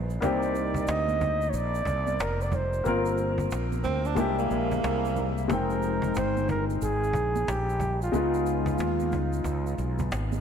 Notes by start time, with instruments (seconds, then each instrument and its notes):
Already playing: fretless electric bass A#1, upright piano B3 D#4 F4 G#4
0.10 shaker
0.20 fretless electric bass C2, upright piano A#3 C4 D#4 G4, flugelhorn D5, cajon bass, shaker
0.42 shaker
0.54 cajon slap, shaker
0.74 cajon bass, shaker
0.87 fretless electric bass D2, flugelhorn D#5, cajon slap, shaker
1.09 high conga, shaker
1.21 cajon bass, low conga, shaker
1.41 shaker
1.50 fretless electric bass A#1, flugelhorn C#5, shaker
1.54 flugelhorn D5, cajon slap
1.75 shaker
1.85 fretless electric bass C2, cajon bass, shaker
2.07 high conga, shaker
2.20 fretless electric bass F1, flugelhorn A#4, cajon slap, shaker
2.41 flugelhorn D5, shaker
2.52 flugelhorn C5, cajon bass, low conga, shaker
2.73 shaker
2.84 fretless electric bass G1, upright piano A#3 C4 F4 A#4, cajon slap, shaker
2.88 flugelhorn A#4
3.05 shaker
3.17 cajon slap, shaker
3.38 cajon bass, shaker
3.51 fretless electric bass A#1, cajon slap, shaker
3.72 high conga, shaker
3.84 fretless electric bass D2, tenor saxophone C4, cajon bass, low conga, shaker
4.05 tenor saxophone D4, shaker
4.15 fretless electric bass C2, upright piano G#3 A#3 E4 G4, cajon bass, shaker
4.39 tenor saxophone A#3, shaker
4.51 fretless electric bass A#1, cajon slap, shaker
4.71 cajon bass, high conga, shaker
4.84 fretless electric bass C2, cajon slap, shaker
5.05 shaker
5.15 cajon slap, low conga, shaker
5.38 shaker
5.48 fretless electric bass F1, upright piano G#3 C4 D#4 G5, flugelhorn A#4, cajon bass, shaker
5.70 shaker
5.82 cajon slap, shaker
6.02 cajon bass, shaker
6.15 fretless electric bass G1, flugelhorn C5, cajon slap, shaker
6.37 high conga, shaker
6.49 flugelhorn A#4, cajon bass, low conga, shaker
6.70 shaker
6.82 fretless electric bass G#1, flugelhorn G#4, cajon slap, shaker
7.04 shaker
7.13 fretless electric bass A#1, cajon bass, shaker
7.36 high conga, shaker
7.48 fretless electric bass A#1, flugelhorn G4, cajon slap, shaker
7.69 shaker
7.80 cajon bass, low conga, shaker
8.02 flugelhorn F4, shaker
8.12 fretless electric bass C#2, upright piano G#3 B3 D#4 F4, cajon slap, shaker
8.34 shaker
8.46 cajon slap, shaker
8.66 cajon bass, shaker
8.78 fretless electric bass D#2, cajon slap, high conga, shaker
9.00 high conga, shaker
9.12 fretless electric bass C#2, cajon bass, low conga, shaker
9.33 shaker
9.44 fretless electric bass C#2, cajon bass, shaker
9.67 cajon slap, shaker
9.78 fretless electric bass B1, cajon slap, shaker
9.99 cajon bass, high conga, shaker
10.12 fretless electric bass G#1, cajon slap, shaker
10.32 high conga, shaker